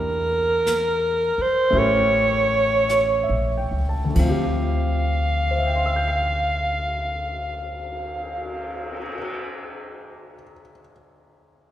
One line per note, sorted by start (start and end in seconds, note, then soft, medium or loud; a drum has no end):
0.00 1.33 E2 medium
0.00 1.72 A#3 soft
0.00 1.73 D4 soft
0.00 1.72 E4 soft
0.00 1.73 G4 soft
0.00 1.43 A#4 medium
0.00 1.74 A#4 soft
0.67 snare soft
0.67 hi-hat pedal medium
1.38 1.80 C5 medium
1.38 muted upright bass stroke soft
1.70 3.25 A1 medium
1.70 4.15 A3 medium
1.70 4.15 C#4 medium
1.70 4.16 E4 medium
1.70 brush sweep soft
1.75 4.17 G4 medium
1.75 4.17 A#4 medium
1.75 3.76 C#5 medium
2.89 3.47 C#5 soft
2.89 snare soft
2.89 hi-hat pedal soft
3.23 3.76 E5 soft
3.29 3.69 A#1 medium
3.58 3.95 G5 soft
3.71 4.13 C#2 soft
3.89 4.33 A5 soft
4.05 8.92 D2 soft
4.09 8.97 D3 soft
4.14 9.00 D2 medium
4.14 9.02 F3 soft
4.14 kick soft
4.14 crash medium
4.19 9.07 C4 soft
4.19 9.03 F5 medium
4.25 9.12 F4 soft
4.29 9.17 G4 medium
5.06 cymbal swell soft
5.51 10.35 C5 soft
5.59 10.42 E5 soft
5.67 10.50 G5 soft
5.76 10.59 C6 soft
5.86 10.70 E6 soft
5.96 10.80 G6 soft
6.08 10.92 C7 soft